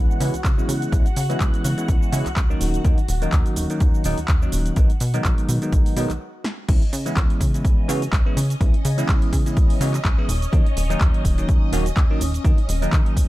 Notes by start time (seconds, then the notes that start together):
Already playing: E3 G#3 B3 C#4 E4 F#4 F#5
0.11 cabasa
0.20 C#3 E3 G#3 B3 C#4 E4, open hi-hat, cabasa
0.34 C#2, closed hi-hat, cabasa
0.44 C#2, kick, clap, closed hi-hat, cabasa
0.57 E3 G#3 B3 C#4 E4, cabasa
0.68 C#3, open hi-hat, cabasa
0.82 closed hi-hat, cabasa
0.92 C#2 E3 G#3 B3 C#4 E4, kick, closed hi-hat, cabasa
1.06 closed hi-hat, cabasa
1.16 C#3, open hi-hat, cabasa
1.29 E3 G#3 B3 C#4 E4, closed hi-hat, cabasa
1.40 C#2, kick, clap, closed hi-hat, cabasa
1.54 closed hi-hat, cabasa
1.64 C#3, open hi-hat, cabasa
1.77 E3 G#3 B3 C#4 E4, closed hi-hat, cabasa
1.88 C#2, kick, closed hi-hat, cabasa
2.02 cabasa
2.12 C#3 E3 G#3 B3 C#4 E4, open hi-hat, cabasa
2.26 C#2, clap, closed hi-hat, cabasa
2.36 C#2, kick, clap, closed hi-hat, cabasa
2.50 D#3 F#3 A#3 C#4 D#4, cabasa
2.61 D#1, open hi-hat, cabasa
2.74 closed hi-hat, cabasa
2.84 D#2 D#3 F#3 A#3 C#4 D#4, kick, closed hi-hat, cabasa
2.98 closed hi-hat, cabasa
3.08 D#1, open hi-hat, cabasa
3.22 D#3 F#3 A#3 C#4 D#4, closed hi-hat, cabasa
3.32 D#2, kick, clap, closed hi-hat, cabasa
3.46 closed hi-hat, cabasa
3.56 D#1, open hi-hat, cabasa
3.70 D#3 F#3 A#3 C#4 D#4, closed hi-hat, cabasa
3.80 D#2, kick, closed hi-hat, cabasa
3.94 cabasa
4.04 D#1 D#3 F#3 A#3 C#4 D#4, open hi-hat, cabasa
4.18 D#2, closed hi-hat, cabasa
4.28 D#2, kick, clap, closed hi-hat, cabasa
4.42 D#3 F#3 A#3 C#4 D#4, cabasa
4.52 D#1, open hi-hat, cabasa
4.66 closed hi-hat, cabasa
4.76 B1 D#3 F#3 G#3 B3 D#4, kick, closed hi-hat, cabasa
4.90 closed hi-hat, cabasa
5.00 B2, open hi-hat, cabasa
5.14 D#3 F#3 G#3 B3 D#4, closed hi-hat, cabasa
5.25 B1, kick, clap, closed hi-hat, cabasa
5.38 closed hi-hat, cabasa
5.49 B2, open hi-hat, cabasa
5.62 D#3 F#3 G#3 B3 D#4, closed hi-hat, cabasa
5.72 B1, kick, closed hi-hat, cabasa
5.86 open hi-hat, cabasa
5.97 B2 D#3 F#3 G#3 B3 D#4, open hi-hat, cabasa
6.10 B1, clap, closed hi-hat, cabasa
6.44 snare
6.68 C#2 E3 G#3 B3 C#4 E4 D#5, kick, closed hi-hat, crash, cabasa
6.82 closed hi-hat
6.93 C#3, open hi-hat, cabasa
7.06 E3 G#3 B3 C#4 E4, closed hi-hat, cabasa
7.16 C#2, kick, clap, closed hi-hat, cabasa
7.30 closed hi-hat
7.41 C#3, kick, open hi-hat, cabasa
7.54 E3 G#3 B3 C#4 E4, closed hi-hat, cabasa
7.65 C#2, kick, closed hi-hat, cabasa
7.88 C#3 E3 G#3 B3 C#4 F#4, open hi-hat, cabasa
8.02 closed hi-hat, cabasa
8.13 C#2, kick, clap, closed hi-hat, cabasa
8.26 E3 G#3 B3 C#4 E4
8.37 C#3, open hi-hat, cabasa
8.50 closed hi-hat, cabasa
8.61 C#2 E3 G#3 B3 C#4 E4, kick, closed hi-hat, cabasa
8.74 closed hi-hat
8.85 C#3, open hi-hat, cabasa
8.98 E3 G#3 B3 C#4 E4, closed hi-hat, cabasa
9.09 C#2, kick, clap, closed hi-hat, cabasa
9.22 closed hi-hat
9.33 C#3, kick, open hi-hat, cabasa
9.46 E3 G#3 B3 C#4 E4, closed hi-hat, cabasa
9.57 C#2, kick, closed hi-hat, cabasa
9.70 open hi-hat
9.81 C#3 E3 G#3 B3 C#4 F#4, open hi-hat, cabasa
9.94 clap, closed hi-hat, cabasa
10.05 C#2, kick, clap, closed hi-hat, cabasa
10.18 E3 G#3 B3 C#4 E4
10.29 D#1, open hi-hat, cabasa
10.42 closed hi-hat, cabasa
10.52 D#2 D#3 F#3 A#3 C#4 D#4, kick, closed hi-hat, cabasa
10.66 closed hi-hat
10.77 D#1, open hi-hat, cabasa
10.90 D#3 F#3 A#3 C#4 D#4, closed hi-hat, cabasa
11.01 D#2, kick, clap, closed hi-hat, cabasa
11.14 closed hi-hat
11.25 D#1, kick, open hi-hat, cabasa
11.38 D#3 F#3 A#3 C#4 D#4, closed hi-hat, cabasa
11.49 D#2, kick, closed hi-hat, cabasa
11.72 D#1 D#3 F#3 A#3 C#4 F#4, open hi-hat, cabasa
11.86 closed hi-hat, cabasa
11.97 D#2, kick, clap, closed hi-hat, cabasa
12.10 D#3 F#3 A#3 C#4 D#4
12.21 D#1, open hi-hat, cabasa
12.34 closed hi-hat, cabasa
12.44 D#2 D#3 F#3 A#3 C#4 D#4, kick, closed hi-hat, cabasa
12.58 closed hi-hat
12.69 D#1, open hi-hat, cabasa
12.82 D#3 F#3 A#3 C#4 D#4, closed hi-hat, cabasa
12.93 D#2, kick, clap, closed hi-hat, cabasa
13.06 closed hi-hat
13.16 D#1, kick, open hi-hat, cabasa